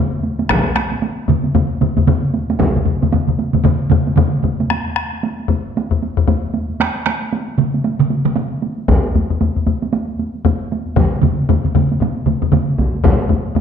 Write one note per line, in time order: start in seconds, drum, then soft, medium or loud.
0.23 taiko high soft
0.39 taiko high medium
0.49 taiko rim medium
0.49 taiko loud
0.49 taiko high medium
0.76 taiko rim medium
0.76 taiko high medium
0.92 taiko high soft
1.02 taiko high medium
1.28 taiko low-mid medium
1.28 taiko mid medium
1.28 taiko high medium
1.44 taiko high soft
1.55 taiko low-mid loud
1.55 taiko mid loud
1.55 taiko high medium
1.81 taiko low-mid medium
1.81 taiko mid medium
1.81 taiko high medium
1.97 taiko low-mid medium
1.97 taiko mid medium
1.97 taiko high medium
2.07 taiko low-mid loud
2.07 taiko mid loud
2.07 taiko high medium
2.34 taiko high medium
2.50 taiko high medium
2.60 taiko medium
2.60 taiko low-mid medium
2.60 taiko mid medium
2.60 taiko high medium
2.76 taiko low-mid medium
2.76 taiko mid medium
2.86 taiko low-mid medium
2.86 taiko mid medium
3.02 taiko low-mid medium
3.02 taiko mid medium
3.02 taiko high medium
3.12 taiko low-mid medium
3.12 taiko mid medium
3.12 taiko high medium
3.27 taiko low-mid medium
3.27 taiko mid medium
3.39 taiko high medium
3.53 taiko low-mid medium
3.53 taiko mid medium
3.53 taiko high medium
3.64 taiko low-mid loud
3.64 taiko mid loud
3.64 taiko high medium
3.90 taiko low-mid loud
3.90 taiko mid loud
3.90 taiko high medium
4.07 taiko high medium
4.16 taiko low-mid loud
4.16 taiko mid loud
4.16 taiko high medium
4.43 taiko low-mid medium
4.43 taiko mid medium
4.43 taiko high medium
4.60 taiko high medium
4.70 taiko rim medium
4.70 taiko high medium
4.86 taiko high soft
4.96 taiko rim medium
5.13 taiko high soft
5.23 taiko high medium
5.40 taiko high soft
5.48 taiko low-mid loud
5.48 taiko high medium
5.77 taiko high medium
5.91 taiko low-mid medium
5.91 taiko high soft
6.02 taiko high medium
6.17 taiko low-mid loud
6.17 taiko high soft
6.28 taiko low-mid loud
6.28 taiko high medium
6.44 taiko high soft
6.54 taiko high medium
6.70 taiko high soft
6.80 taiko rim medium
6.80 taiko high medium
6.96 taiko high soft
7.06 taiko rim medium
7.06 taiko high medium
7.22 taiko high soft
7.33 taiko high medium
7.48 taiko high soft
7.58 taiko mid loud
7.58 taiko high medium
7.74 taiko high soft
7.84 taiko high medium
7.99 taiko mid loud
7.99 taiko high soft
8.10 taiko high medium
8.25 taiko mid loud
8.25 taiko high soft
8.36 taiko mid medium
8.36 taiko high medium
8.52 taiko high soft
8.62 taiko high medium
8.78 taiko high soft
8.88 taiko loud
8.88 taiko low-mid loud
8.88 taiko high medium
9.05 taiko high soft
9.15 taiko low-mid medium
9.15 taiko high medium
9.30 taiko low-mid medium
9.30 taiko high soft
9.41 taiko low-mid medium
9.41 taiko high medium
9.56 taiko low-mid medium
9.56 taiko high soft
9.66 taiko low-mid medium
9.66 taiko high medium
9.82 taiko high medium
9.93 taiko high medium
10.09 taiko high soft
10.19 taiko high soft
10.35 taiko high soft
10.45 taiko low-mid loud
10.45 taiko high medium
10.61 taiko high soft
10.72 taiko high medium
10.88 taiko high soft
10.96 taiko loud
10.96 taiko low-mid loud
10.96 taiko mid medium
10.96 taiko high medium
11.14 taiko high soft
11.23 taiko low-mid medium
11.23 taiko mid loud
11.23 taiko high medium
11.40 taiko high soft
11.49 taiko low-mid loud
11.49 taiko mid medium
11.49 taiko high medium
11.64 taiko low-mid medium
11.64 taiko mid medium
11.64 taiko high soft
11.75 taiko low-mid medium
11.75 taiko mid loud
11.75 taiko high medium
11.92 taiko high soft
12.00 taiko low-mid medium
12.00 taiko mid medium
12.00 taiko high medium
12.17 taiko high soft
12.26 taiko low-mid medium
12.26 taiko mid medium
12.26 taiko high medium
12.42 taiko low-mid medium
12.42 taiko mid medium
12.42 taiko high soft
12.52 taiko low-mid loud
12.52 taiko mid loud
12.52 taiko high medium
12.69 taiko high soft
12.78 taiko medium
12.78 taiko high medium
12.95 taiko high soft
13.04 taiko loud
13.04 taiko low-mid loud
13.04 taiko high medium
13.21 taiko high soft
13.29 taiko low-mid medium
13.29 taiko high medium
13.45 taiko high soft
13.55 taiko low-mid medium
13.55 taiko high medium